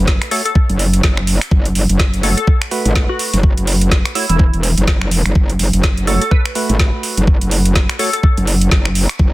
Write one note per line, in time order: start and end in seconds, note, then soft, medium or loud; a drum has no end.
0.00 0.19 F#1 loud
0.00 0.29 A3 medium
0.00 0.29 F#4 medium
0.00 0.29 B4 loud
0.07 kick loud
0.07 snare loud
0.22 finger snap medium
0.22 closed hi-hat soft
0.31 0.42 A3 medium
0.31 0.42 F#4 medium
0.31 0.40 A4 medium
0.31 0.42 C#5 medium
0.31 open hi-hat loud
0.45 0.52 A4 medium
0.45 closed hi-hat medium
0.55 kick loud
0.69 1.02 F#1 medium
0.69 closed hi-hat soft
0.79 open hi-hat loud
0.93 closed hi-hat medium
1.03 1.39 F#1 medium
1.03 kick loud
1.03 snare loud
1.17 finger snap medium
1.27 open hi-hat loud
1.41 finger snap medium
1.41 closed hi-hat medium
1.51 1.74 F#1 loud
1.51 kick loud
1.65 closed hi-hat medium
1.75 1.87 F#1 medium
1.75 open hi-hat loud
1.89 2.35 F#1 loud
1.89 closed hi-hat medium
1.99 kick loud
1.99 snare loud
2.14 closed hi-hat soft
2.23 2.39 A3 medium
2.23 2.39 F#4 medium
2.23 2.32 A4 medium
2.23 2.39 C#5 medium
2.23 open hi-hat loud
2.37 2.44 A4 medium
2.37 closed hi-hat medium
2.47 kick loud
2.62 finger snap medium
2.62 closed hi-hat soft
2.71 4.13 A3 medium
2.71 4.13 F#4 medium
2.71 4.13 B4 loud
2.71 open hi-hat loud
2.85 3.07 G#1 loud
2.85 closed hi-hat medium
2.95 kick loud
2.95 snare loud
3.09 3.43 F#4 medium
3.19 open hi-hat loud
3.33 3.55 F#1 loud
3.33 closed hi-hat medium
3.43 kick loud
3.57 4.03 F#1 loud
3.57 closed hi-hat soft
3.67 open hi-hat loud
3.81 closed hi-hat medium
3.91 kick loud
3.91 snare loud
4.05 finger snap medium
4.05 closed hi-hat soft
4.15 4.26 A3 medium
4.15 4.24 E4 medium
4.15 4.26 F#4 medium
4.15 4.26 C#5 medium
4.15 open hi-hat loud
4.29 4.51 E1 medium
4.29 4.36 E4 medium
4.29 closed hi-hat medium
4.39 kick loud
4.53 4.75 E1 loud
4.53 closed hi-hat soft
4.63 open hi-hat loud
4.77 5.23 F#1 loud
4.77 closed hi-hat medium
4.87 kick loud
4.87 snare loud
5.01 finger snap medium
5.11 open hi-hat loud
5.25 5.34 F#1 loud
5.25 finger snap medium
5.25 closed hi-hat medium
5.35 5.58 F#1 loud
5.35 kick loud
5.50 closed hi-hat medium
5.59 5.71 F#1 loud
5.59 open hi-hat loud
5.73 6.19 F#1 loud
5.73 closed hi-hat medium
5.83 kick loud
5.83 snare loud
5.97 closed hi-hat soft
6.07 6.23 A3 medium
6.07 6.23 F#4 medium
6.07 6.16 A4 medium
6.07 6.23 C#5 medium
6.07 open hi-hat loud
6.21 6.28 A4 medium
6.21 closed hi-hat medium
6.31 6.46 B4 medium
6.31 kick loud
6.45 finger snap medium
6.45 closed hi-hat soft
6.55 7.97 A3 medium
6.55 7.97 F#4 medium
6.55 7.97 B4 loud
6.55 open hi-hat loud
6.69 6.91 G#1 loud
6.69 closed hi-hat medium
6.79 kick loud
6.79 snare loud
7.03 open hi-hat loud
7.17 7.39 F#1 loud
7.17 closed hi-hat medium
7.27 kick loud
7.41 7.87 F#1 loud
7.41 closed hi-hat medium
7.51 open hi-hat loud
7.65 closed hi-hat medium
7.75 kick loud
7.75 snare loud
7.89 finger snap medium
7.89 closed hi-hat medium
7.99 8.10 A3 medium
7.99 8.10 F#4 medium
7.99 8.08 A4 medium
7.99 8.10 C#5 medium
7.99 open hi-hat loud
8.13 8.20 A4 medium
8.13 closed hi-hat medium
8.23 kick loud
8.37 8.70 F#1 medium
8.37 closed hi-hat soft
8.47 open hi-hat loud
8.61 closed hi-hat medium
8.71 9.07 F#1 loud
8.71 kick loud
8.71 snare loud
8.85 finger snap medium
8.95 open hi-hat loud
9.09 finger snap medium
9.09 closed hi-hat medium
9.19 9.33 F#1 medium
9.19 kick loud